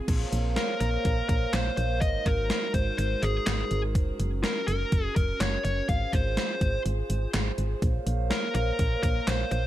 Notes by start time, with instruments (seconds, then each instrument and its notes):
0.08 fm bass A#1, glass harmonica A#3 A#4 C5 C#5 F5, kick, closed hi-hat, crash
0.32 fm bass A#1, closed hi-hat
0.56 lead electric guitar A#4, snare, closed hi-hat
0.81 fm bass A#1, lead electric guitar A#4, closed hi-hat
1.05 fm bass A#1, kick, closed hi-hat
1.29 fm bass A#1, lead electric guitar A#4, kick, closed hi-hat
1.53 fm bass A#1, lead electric guitar C5, snare, clap, closed hi-hat
1.77 fm bass A#1, lead electric guitar C5, closed hi-hat
2.01 fm bass G#1, glass harmonica G#3 D#4 F#4, lead electric guitar D#5, kick, closed hi-hat
2.26 fm bass G#1, lead electric guitar A#4, kick, closed hi-hat
2.50 snare, closed hi-hat
2.74 fm bass G#1, lead electric guitar C5, kick, closed hi-hat
2.98 fm bass G#1, lead electric guitar C5, closed hi-hat
3.23 fm bass G#1, lead electric guitar G#4, closed hi-hat
3.47 fm bass G#1, lead electric guitar G#4, snare, clap, closed hi-hat
3.71 fm bass G#1, closed hi-hat
3.95 fm bass F#1, glass harmonica C#4, kick, closed hi-hat
4.20 fm bass F#1, closed hi-hat
4.44 lead electric guitar A#4, snare, closed hi-hat
4.68 fm bass F#1, lead electric guitar A#4, closed hi-hat
4.92 fm bass F#1, kick, closed hi-hat
5.16 fm bass F#1, lead electric guitar A#4, kick, closed hi-hat
5.40 fm bass F#1, lead electric guitar C#5, snare, clap, closed hi-hat
5.64 fm bass F#1, lead electric guitar C#5, closed hi-hat
5.89 fm bass G#1, glass harmonica F4 G#4 C5, lead electric guitar F5, kick, closed hi-hat
6.13 fm bass G#1, lead electric guitar C5, kick, closed hi-hat
6.37 snare, closed hi-hat
6.61 fm bass G#1, kick, closed hi-hat
6.86 fm bass G#1, closed hi-hat
7.10 fm bass G#1, closed hi-hat
7.34 fm bass G#1, snare, clap, closed hi-hat
7.58 fm bass G#1, closed hi-hat
7.82 fm bass A#1, glass harmonica A#3 A#4 C5 C#5 F5, kick, closed hi-hat
8.07 fm bass A#1, closed hi-hat
8.31 lead electric guitar A#4, snare, closed hi-hat
8.55 fm bass A#1, lead electric guitar A#4, closed hi-hat
8.79 fm bass A#1, kick, closed hi-hat
9.03 fm bass A#1, lead electric guitar A#4, kick, closed hi-hat
9.27 fm bass A#1, lead electric guitar C5, snare, clap, closed hi-hat
9.51 fm bass A#1, lead electric guitar C5, closed hi-hat